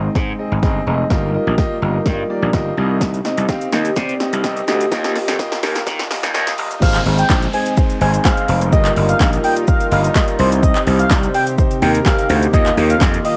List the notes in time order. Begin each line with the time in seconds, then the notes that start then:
Already playing: G#3 C4 D#4, riser
0.15 G#2 C4 D#4 G#4 D#5, kick, snare
0.39 C4 D#4 G#4 D#5
0.52 G#1
0.62 G1 C4 D#4 G#4 D#5, kick, snare
0.86 F1 C4 D#4 G#4 D#5
1.10 G1 G3 A#3 F4 G4 A#4 D#5, kick, snare
1.34 A#3 F4 G4 D#5
1.47 A#1
1.58 A#3 F4 G4 D#5, kick, snare
1.82 G1 A#3 F4 G4 D#5
2.06 G2 A#3 F4 G4 D#5, kick, snare
2.29 A#3 F4 G4 D5
2.42 A#1
2.53 G1 A#3 F4 G4 D#5, kick, snare
2.77 C2 C3 C4 D#4 G4 D#5
3.01 kick, snare, shaker
3.14 closed hi-hat, shaker
3.25 C4 D#4 G4 D#5, snare, shaker
3.37 C2, closed hi-hat, shaker
3.48 C4 D#4 G4 F5, kick, snare, shaker
3.61 closed hi-hat, shaker
3.72 D#2 C4 D#4 G4 D#5, snare, shaker
3.85 closed hi-hat, shaker
3.96 C3 C4 D#4 G4 D5, kick, snare, shaker
4.09 closed hi-hat, shaker
4.20 C4 D#4 G4 D#5, snare, shaker
4.33 C2, closed hi-hat, shaker
4.44 C4 D#4 G4 D#5, kick, snare, shaker
4.57 closed hi-hat, shaker
4.67 D2 C4 D#4 G4 D#5, snare, shaker
4.81 closed hi-hat, shaker
4.91 D#2 D#3 A#3 F4 G4 D#5, kick, snare, shaker
5.04 snare, closed hi-hat, shaker
5.15 A#3 F4 G4 D#5, snare, open hi-hat, shaker
5.28 F2, snare, closed hi-hat, shaker
5.39 A#3 F4 G4 D#5, kick, snare, shaker
5.52 snare, closed hi-hat, shaker
5.63 D#2 A#3 F4 G4 A#4, snare, open hi-hat, shaker
5.75 snare, closed hi-hat, shaker
5.86 D#3 A#3 F4 G4 D#5, kick, snare, shaker
5.99 snare, closed hi-hat, shaker
6.10 A#3 F4 G4 D#5, snare, open hi-hat, shaker
6.23 D#2, snare, closed hi-hat, shaker
6.34 D#2 A#3 F4 G4 D#5, snare, shaker
6.47 snare, closed hi-hat, shaker
6.58 G1 A#3 F4 G4 D#5, open hi-hat, shaker
6.71 closed hi-hat, shaker
6.82 G#1 G#3 C4 D#4 G#4 C5 F5, kick, crash, downlifter, shaker
6.94 clap, closed hi-hat, shaker
7.06 G#1 D#4 G#4 C5, open hi-hat, shaker
7.18 G5, closed hi-hat, shaker
7.29 A#1 D#4 G#4 C5, kick, snare, clap, shaker
7.42 closed hi-hat, shaker
7.53 D#4 G#4 C5 G#5, open hi-hat, shaker
7.66 closed hi-hat, shaker
7.77 D#4 G#4 C5, kick, shaker
7.90 closed hi-hat, shaker
8.01 G#1 D#4 G#4 C5 G#5, open hi-hat, shaker
8.14 closed hi-hat, shaker
8.25 D#4 G#4 C5 F5, kick, snare, clap, shaker
8.37 closed hi-hat, shaker
8.48 F1 D#4 G#4 C5, open hi-hat, shaker
8.61 closed hi-hat, shaker
8.72 G1 G3 A#3 D#4 F4 G4 A#4 D#5, kick, shaker
8.85 clap, closed hi-hat, shaker
8.96 G1 A#3 D#4 F4 G4 D#5, open hi-hat, shaker
9.09 F5, closed hi-hat, shaker
9.20 A#1 A#3 D#4 F4 G4, kick, snare, clap, shaker
9.33 closed hi-hat, shaker
9.44 A#3 D#4 F4 G4 D#5 G5, open hi-hat, shaker
9.56 closed hi-hat, shaker
9.67 D#4 F4 G4 D#5 F5, kick, shaker
9.80 closed hi-hat, shaker
9.91 G1 A#3 D#4 F4 G4 D#5 F5, open hi-hat, shaker
10.04 closed hi-hat, shaker
10.15 A#3 D#4 F4 G4 D#5, kick, snare, clap, shaker
10.28 closed hi-hat, shaker
10.39 C2 C3 C4 D#4 G4 C5, open hi-hat, shaker
10.52 closed hi-hat, shaker
10.63 D#5, kick, shaker
10.76 clap, closed hi-hat, shaker
10.87 C2 D#4 G4 C5, open hi-hat, shaker
10.99 F5, closed hi-hat, shaker
11.10 C2 D#4 G4 D5, kick, snare, clap, shaker
11.23 closed hi-hat, shaker
11.34 D#4 G4 C5 G5, open hi-hat, shaker
11.47 closed hi-hat, shaker
11.58 D#4 G4 C5, kick, shaker
11.71 closed hi-hat, shaker
11.82 D#2 D#4 G4 A#4 G5, open hi-hat, shaker
11.95 closed hi-hat, shaker
12.06 D#4 G4 A#4 F5, kick, snare, clap, shaker
12.19 closed hi-hat, shaker
12.29 D2 D#4 G4 C5, open hi-hat, shaker
12.43 closed hi-hat, shaker
12.53 D#2 D#3 A#3 D#4 F4 G4 D#5, kick, shaker
12.66 clap, closed hi-hat, shaker
12.77 D#2 A#3 D#4 F4 G4 D#5, open hi-hat, shaker
12.90 F5, closed hi-hat, shaker
13.01 F2 D#4 D#5, kick, snare, clap, shaker
13.14 closed hi-hat, shaker
13.25 A#3 D#4 F4 G4 D#5 F5, open hi-hat, shaker